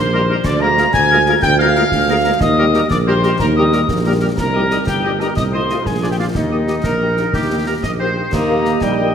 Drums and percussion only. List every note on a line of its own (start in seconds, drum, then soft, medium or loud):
0.44 concert bass drum medium
0.44 snare medium
0.44 crash soft
0.78 snare medium
0.94 concert bass drum medium
0.94 snare medium
1.26 snare soft
1.42 concert bass drum medium
1.42 snare medium
1.75 snare medium
1.92 concert bass drum medium
1.92 snare medium
2.41 concert bass drum medium
2.41 snare medium
2.74 snare medium
2.91 concert bass drum medium
2.91 snare medium
3.23 snare soft
3.39 concert bass drum medium
3.39 snare medium
3.73 snare medium
3.89 concert bass drum medium
3.89 snare medium
4.38 concert bass drum medium
4.38 snare medium
4.38 crash soft
4.71 snare medium
4.87 concert bass drum medium
4.87 snare medium
5.20 snare soft
5.37 concert bass drum medium
5.37 snare medium
5.70 snare medium
5.86 concert bass drum medium
5.86 snare medium
6.35 concert bass drum medium
6.35 snare medium
6.68 snare medium
6.84 concert bass drum medium
6.84 snare medium
7.17 snare soft
7.33 concert bass drum medium
7.33 snare medium
7.83 concert bass drum medium
7.83 snare medium
8.33 concert bass drum medium
8.33 snare medium
8.33 crash soft
8.65 snare medium
8.81 concert bass drum medium
8.81 snare medium